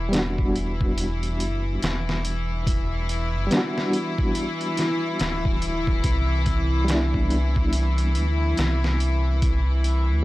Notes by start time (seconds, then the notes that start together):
Already playing: E1 E3 E4
0.09 G3 B3
0.13 D4, snare, closed hi-hat
0.19 F#4
0.38 kick
0.56 closed hi-hat
0.81 kick
0.98 closed hi-hat
1.23 closed hi-hat
1.40 F#1, closed hi-hat
1.82 E1, snare, closed hi-hat
2.09 snare
2.25 closed hi-hat
2.67 kick, closed hi-hat
3.09 closed hi-hat
3.34 F#1
3.47 G3 B3
3.51 D4, snare, closed hi-hat
3.57 F#4
3.78 snare
3.93 closed hi-hat
4.18 kick
4.35 closed hi-hat
4.61 closed hi-hat
4.77 snare, closed hi-hat
5.19 D1, snare, closed hi-hat
5.45 kick
5.62 closed hi-hat
5.87 kick
6.04 C2, kick, closed hi-hat
6.46 kick, closed hi-hat
6.84 G3 B3, closed hi-hat
6.90 D4, snare
6.95 E4
7.14 kick
7.30 closed hi-hat
7.56 kick
7.73 closed hi-hat
7.98 closed hi-hat
8.15 D2, closed hi-hat
8.57 C2, snare, closed hi-hat
8.84 snare
9.00 closed hi-hat
9.42 kick, closed hi-hat
9.84 closed hi-hat
10.10 D2